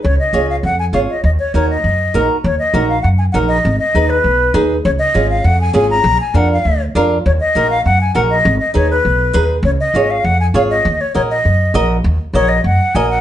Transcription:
<<
  \new Staff \with { instrumentName = "Flute" } { \time 4/4 \key ees \minor \tempo 4 = 200 des''8 ees''4 f''8 ges''8 aes''8 f''8 ees''8 | ees''8 des''8 des''8 ees''2 r8 | des''8 ees''4 f''8 ges''8 aes''8 ges''8 ees''8~ | ees''8 ees''4 ces''2 r8 |
des''8 ees''4 f''8 ges''8 aes''8 aes''8 bes''8~ | bes''8 aes''8 ges''8 f''4 r4. | des''8 ees''4 f''8 ges''8 aes''8 ges''8 ees''8~ | ees''8 ees''8 des''8 ces''2 r8 |
des''8 ees''4 f''8 ges''8 aes''8 f''8 ees''8~ | ees''8 des''8 des''8 ees''2 r8 | r4 des''8 ees''8 ges''4 aes''8 ges''8 | }
  \new Staff \with { instrumentName = "Nylon-string guitar" } { \time 4/4 \key ees \minor r4 <f' aes' des''>8 r4. <f' aes' des''>8 r8 | r4 <ees' ges' bes'>8 r4. <ees' ges' bes'>8 r8 | r4 <ees' ges' bes'>8 r4. <ees' ges' bes'>8 r8 | r4 <ees' aes' ces''>8 r4. <ees' aes' ces''>8 r8 |
r4 <des' f' aes'>8 r4. <des' f' aes'>8 r8 | r4 <d' f' bes'>8 r4. <d' f' bes'>8 r8 | r4 <ees' ges' bes'>8 r4. <ees' ges' bes'>8 r8 | r4 <ees' aes' ces''>8 r4. <ees' aes' ces''>8 r8 |
r4 <f' aes' des''>8 r4. <f' aes' des''>8 r8 | r4 <ges' bes' ees''>8 r4. <ges' bes' ees''>8 r8 | r4 <ges' bes' ees''>8 r4. <ges' bes' ees''>8 r8 | }
  \new Staff \with { instrumentName = "Upright bass" } { \clef bass \time 4/4 \key ees \minor des,8 r8 des,4 f,4 aes,,8 r8 | ees,8 r8 ees,4 ges,4 bes,,8 r8 | ees,8 r8 bes,,4 ges,4 bes,,4 | aes,,8 r8 ees,4 ces,4 ees,4 |
des,8 r8 aes,,4 f,4 aes,,4 | bes,,8 r8 f,4 d,4 f,4 | ees,8 r8 bes,,4 ges,4 bes,,4 | aes,,8 r8 ees,4 ces,4 ees,4 |
des,8 r8 aes,,4 f,4 aes,,4 | ees,8 r8 bes,,4 ges,4 bes,,4 | ees,8 r8 bes,,4 ges,8 r8 bes,,4 | }
>>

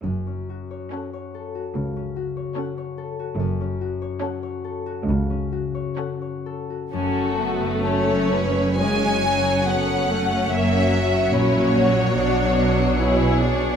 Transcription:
<<
  \new Staff \with { instrumentName = "Violin section" } { \time 4/4 \key fis \minor \tempo 4 = 72 r4 cis''4 r4 cis''4 | r4 cis''4 r4 cis''4 | r4 cis''4 gis''4 fis''4 | e''4 cis''2~ cis''8 r8 | }
  \new Staff \with { instrumentName = "Violin section" } { \time 4/4 \key fis \minor << { r4 a'4 r4 a'4 | r4 a'4 r4 a'4 | a'4 a'8 b'8 cis''2 | cis''1 | } \\ { r1 | r1 | fis'4 a'2. | fis'4 e'8 fis'8 fis'4 gis'4 | } >> }
  \new Staff \with { instrumentName = "Harp" } { \time 4/4 \key fis \minor fis,16 cis'16 fis'16 cis''16 fis''16 cis''16 a'16 fis'16 cis16 cis'16 fis'16 cis''16 fis''16 cis''16 a'16 fis'16 | fis,16 cis'16 fis'16 cis''16 fis''16 cis''16 a'16 fis'16 cis16 cis'16 fis'16 cis''16 fis''16 cis''16 a'16 fis'16 | \tuplet 3/2 { fis,8 cis'8 fis'8 a'8 fis'8 cis'8 cis8 cis'8 fis'8 a'8 fis'8 cis'8 } | \tuplet 3/2 { fis,8 cis'8 fis'8 ais'8 fis'8 cis'8 b,8 d'8 fis'8 b'8 fis'8 d'8 } | }
  \new Staff \with { instrumentName = "Viola section" } { \time 4/4 \key fis \minor << { r1 | r1 | cis'8 b8 cis'4 cis'4 cis'4~ | cis'4 cis'4 d'4 e'8 d'8 | } \\ { r4 cis'4 r4 cis'4 | r4 cis'4 r4 cis'4 | a2 gis8 fis8 b8 a8 | ais8 fis2.~ fis8 | } >> }
  \new Staff \with { instrumentName = "Cello section" } { \clef bass \time 4/4 \key fis \minor fis,4 r4 cis,4 r4 | fis,4 r4 cis,4 r4 | fis,1 | fis,4 ais,4 b,2 | }
  \new Staff \with { instrumentName = "Double bass section" } { \clef bass \time 4/4 \key fis \minor fis,,4 r4 cis,4 r4 | fis,,4 r4 cis,4 r4 | fis,,1 | fis,,4 ais,,4 b,,2 | }
>>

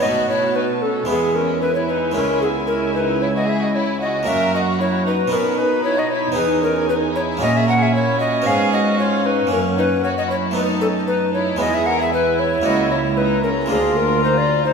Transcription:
<<
  \new Staff \with { instrumentName = "Violin section" } { \time 4/4 \key b \major \tempo 4 = 114 a''2 gis''2~ | gis''1 | ais''2 b''2 | gis''2 e''2 |
eis''2 fis''2 | a''2 gis''2 | ais''1 | }
  \new Staff \with { instrumentName = "Recorder" } { \time 4/4 \key b \major dis''8 cis''8 b'8 a'8 gis'8 ais'8 b'16 cis''16 b'8 | ais'8 gis'8 ais'8 b'8 cis''16 dis''16 e''16 dis''16 cis''8 dis''8 | e''8 dis''8 cis''8 b'8 ais'8 b'8 cis''16 dis''16 cis''8 | b'8 ais'8 b'8 cis''8 dis''16 e''16 fis''16 e''16 cis''8 dis''8 |
eis''8 dis''8 cis''8 b'8 ais'8 b'8 cis''16 dis''16 cis''8 | b'8 a'8 b'8 cis''8 dis''16 e''16 fis''16 e''16 b'8 cis''8 | dis''8 cis''8 b'8 ais'8 gis'8 ais'8 bis'16 d''8 bis'16 | }
  \new Staff \with { instrumentName = "Viola section" } { \time 4/4 \key b \major fis'2 e'2~ | e'1 | fis'2 dis'2~ | dis'2 cis'2~ |
cis'1 | dis'2 e'2~ | e'2 eis'2 | }
  \new Staff \with { instrumentName = "Violin section" } { \time 4/4 \key b \major fis'8 e'8 dis'8 cis'8 b8 cis'8 e'16 e'16 dis'8 | cis'8 b8 cis'8 dis'8 e'16 fis'16 gis'16 fis'16 e'8 fis'8 | ais'8 fis'8 e'8 dis'8 cis'8 dis'8 e'16 fis'16 e'8 | dis'8 cis'8 dis'8 e'8 fis'16 gis'16 ais'16 gis'16 e'8 fis'8 |
gis'8 fis'8 eis'8 dis'8 cis'8 dis'8 fis'16 fis'16 e'8 | dis'8 cis'8 dis'8 e'8 fis'16 gis'16 ais'16 gis'16 e'8 e'8 | fis'8 e'8 dis'8 cis'8 d'8 d'8 dis'16 eis'8 dis'16 | }
  \new Staff \with { instrumentName = "Harpsichord" } { \time 4/4 \key b \major <a b dis'>2 <gis b e'>2 | <gis cis' e'>1 | <ais cis' fis'>2 <b dis' fis'>2 | <b dis' gis'>2 <ais cis' e'>2 |
<b cis'>2 <ais cis'>2 | <a b dis'>2 <gis b e'>2 | <ais e'>2 <gis ais eis'>2 | }
  \new Staff \with { instrumentName = "Harpsichord" } { \clef bass \time 4/4 \key b \major b,2 e,2 | cis,1 | fis,2 b,2 | e,2 ais,2 |
gis,2 fis,2~ | fis,2 e,2 | cis,2 d,2 | }
  \new Staff \with { instrumentName = "Cello section" } { \clef bass \time 4/4 \key b \major b,2 e,2 | cis,1 | fis,2 b,2 | e,2 ais,2 |
gis,2 fis,2~ | fis,2 e,2 | cis,2 d,2 | }
>>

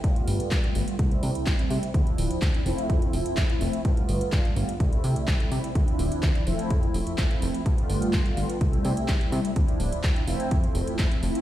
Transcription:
<<
  \new Staff \with { instrumentName = "Analog polysynth" } { \time 4/4 \key c \major \tempo 4 = 126 <g a b f'>2 <g a c' e'>2 | <f c' d' e'>4. <f a c' e'>2~ <f a c' e'>8 | <g a b f'>2 <g a c' e'>2 | <f c' d' e'>4. <f a c' e'>2~ <f a c' e'>8 |
<a f'>2 e'2 | <f c' d' e'>4. <f a c' e'>2~ <f a c' e'>8 | }
  \new Staff \with { instrumentName = "Analog synth bass" } { \clef bass \time 4/4 \key c \major g,16 r16 g,,16 g,16 g,16 r16 g,,16 r16 c,16 r16 c16 c,16 c,16 r16 c16 r16 | d,16 r16 d,,16 d,16 d,16 r16 f,,16 r16 f,16 r16 f,,16 f,16 f,16 r16 f,,16 r16 | g,16 r16 g,,16 g,16 g,16 r16 g,,16 r16 c,16 r16 c16 c,16 c,16 r16 c16 r16 | d,16 r16 d,,16 d,16 d,16 r16 f,,16 r16 f,16 r16 f,,16 f,16 f,16 r16 f,,16 r16 |
g,16 r16 g,,16 g,16 g,16 r16 g,,16 r16 c,16 r16 c16 c,16 c,16 r16 c16 r16 | d,16 r16 d,,16 d,16 d,16 r16 f,,16 r16 f,16 r16 f,,16 f,16 f,16 r16 f,,16 r16 | }
  \new DrumStaff \with { instrumentName = "Drums" } \drummode { \time 4/4 <hh bd>16 hh16 hho16 hh16 <hc hh bd>16 hh16 hho16 hh16 <hh bd>16 hh16 hho16 hh16 <hc hh bd>16 hh16 hho16 hh16 | <hh bd>16 hh16 hho16 hh16 <hc hh bd>16 hh16 hho16 hh16 <hh bd>16 hh16 hho16 hh16 <hc hh bd>16 hh16 hho16 hh16 | <hh bd>16 hh16 hho16 hh16 <hc hh bd>16 hh16 hho16 hh16 <hh bd>16 hh16 hho16 hh16 <hc hh bd>16 hh16 hho16 hh16 | <hh bd>16 hh16 hho16 hh16 <hc hh bd>16 hh16 hho16 hh16 <hh bd>16 hh16 hho16 hh16 <hc hh bd>16 hh16 hho16 hh16 |
<hh bd>16 hh16 hho16 hh16 <hc hh bd>16 hh16 hho16 hh16 <hh bd>16 hh16 hho16 hh16 <hc hh bd>16 hh16 hho16 hh16 | <hh bd>16 hh16 hho16 hh16 <hc hh bd>16 hh16 hho16 hh16 <hh bd>16 hh16 hho16 hh16 <hc hh bd>16 hh16 hho16 hh16 | }
>>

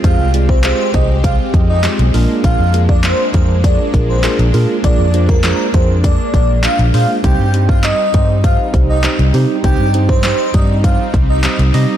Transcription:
<<
  \new Staff \with { instrumentName = "Digital synth lead" } { \time 4/4 \key bes \mixolydian \tempo 4 = 100 f''8 r16 c''16 c''8 ees''16 r16 f''16 r8 ees''16 r4 | f''8 r16 d''16 c''8 c''16 r16 d''16 r8 c''16 r4 | d''8 r16 bes'16 bes'8 c''16 r16 d''8 d''16 r16 f''16 r16 f''16 r16 | g''8 r16 f''16 ees''8 ees''16 r16 f''16 r8 ees''16 r4 |
g''8 r16 c''16 c''8 ees''16 r16 f''16 r8 ees''16 r4 | }
  \new Staff \with { instrumentName = "Tine electric piano" } { \time 4/4 \key bes \mixolydian <aes c' f' aes' c''>8 <aes c' f' aes' d''>8 <aes c' f' aes' c''>8 <aes c' f' aes' c''>8 <aes c' f' aes' c''>8 <aes c' f' aes' ees''>8 <aes c' f' aes' d''>8 <bes d' f' aes' bes'>8~ | <bes d' f' aes' bes'>8 <bes d' f' aes' bes'>8 <bes d' f' aes' bes'>8 <bes d' f' aes' bes'>8 <bes d' f' aes' bes'>8 <bes d' f' aes' bes'>8 <bes d' f' aes' bes'>8 <bes d' f' aes' bes'>8 | <bes d' f' aes' bes'>8 <bes d' f' aes' c''>8 <bes d' f' aes' c''>8 <bes d' f' aes' bes'>8 <bes d' f' aes' bes'>8 <bes d' f' aes' bes'>8 <bes d' f' aes' c''>8 <bes d' f' aes' c''>8 | <g c' ees' g' c''>8 <g c' ees' g' c''>8 <g c' ees' g' c''>8 <g c' ees' g' c''>8 <g c' ees' g' c''>8 <g c' ees' g' c''>8 <g c' ees' g' c''>8 <g c' ees' g' c''>8 |
<g c' ees' g' c''>8 <g c' ees' g' c''>8 <g c' ees' g' c''>8 <g c' ees' g' d''>8 <g c' ees' g' c''>8 <g c' ees' g' c''>8 <g c' ees' g' c''>8 <g c' ees' g' ees''>8 | }
  \new Staff \with { instrumentName = "Supersaw synth" } { \time 4/4 \key bes \mixolydian << { <c' g'>2.~ <c' g'>8 <bes d'>8~ | <bes d'>1~ | <bes d'>1 | <c' ees'>1~ |
<c' ees'>1 | } \\ { aes1~ | aes1~ | aes1 | g1~ |
g1 | } >> }
  \new Staff \with { instrumentName = "Fingered electric bass" } { \clef bass \time 4/4 \key bes \mixolydian f,16 c,4~ c,16 c,4 f,8. b,,16 bes,,16 r16 | bes,,16 f,4~ f,16 f,4 bes,,8. bes,,16 bes,16 r16 | bes,,16 f,4~ f,16 f,4 bes,,8. bes,,16 bes,16 r16 | c,16 g,4~ g,16 g,4 c,8. c,16 c16 r16 |
c,16 g,4~ g,16 g,4 c,8. c,16 c16 r16 | }
  \new DrumStaff \with { instrumentName = "Drums" } \drummode { \time 4/4 <hh bd>8 hh16 bd16 <hc hh sn>8 <hh bd>8 <hh bd>8 <hh bd>8 <hc hh sn>16 hh16 hho8 | <hh bd>8 hh16 bd16 <hc hh sn>8 <hh bd>8 <hh bd>8 <hh bd>8 <hc hh sn>16 hh16 hho8 | <hh bd>8 hh16 <hh bd>16 <hc hh sn>8 <hh bd>8 <hh bd>8 <hh bd>8 <hc hh sn>16 hh16 hho8 | <hh bd>8 hh16 bd16 <hc hh sn>8 <hh bd>8 <hh bd>8 <hh bd>8 <hc hh sn>16 hh16 hho8 |
<hh bd>8 hh16 bd16 <hc hh sn>8 <hh bd>8 <hh bd>8 <hh bd>8 <hc hh sn>16 hh16 hho8 | }
>>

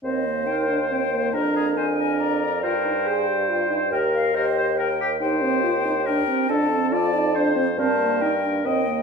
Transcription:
<<
  \new Staff \with { instrumentName = "Flute" } { \time 3/4 \key ees \major \tempo 4 = 140 ees''4 g''4 g''4 | bes''4 aes''4 bes''4 | g''2. | g''8 f''8 ees''4 g''4 |
\key g \minor g''2 g''4 | a''4 a''4. r8 | a''4 g''4 g''4 | }
  \new Staff \with { instrumentName = "Clarinet" } { \time 3/4 \key ees \major r4 bes'4 c''4 | bes'2 d''4 | c''2. | bes'4 c''4 bes'4 |
\key g \minor g'2. | a'4 d''4 c''4 | bes'4. r8 ees''4 | }
  \new Staff \with { instrumentName = "Oboe" } { \time 3/4 \key ees \major c''2. | bes'8 aes'8 c''8 bes'4. | bes'4 c''2 | bes'4 bes'8 c''8 bes'8 g'8 |
\key g \minor c''2 bes'4 | a'4 d''4 c''4 | c''4 bes'4 ees''4 | }
  \new Staff \with { instrumentName = "French horn" } { \time 3/4 \key ees \major c'8 bes8 ees'8 d'8 c'8 bes8 | d'4 d'4. r8 | f'8 ees'8 aes'8 g'8 f'8 ees'8 | g'4 g'4. r8 |
\key g \minor ees'8 c'8 f'8 ees'8 d'8 c'8 | d'8 c'8 f'8 ees'8 d'8 c'8 | c'8 bes8 ees'8 d'8 c'8 bes8 | }
  \new Staff \with { instrumentName = "Bassoon" } { \clef bass \time 3/4 \key ees \major ees,2. | f,2. | g,2. | ees,2.~ |
\key g \minor ees,2~ ees,8 r8 | f,2. | g,2 ees,4 | }
>>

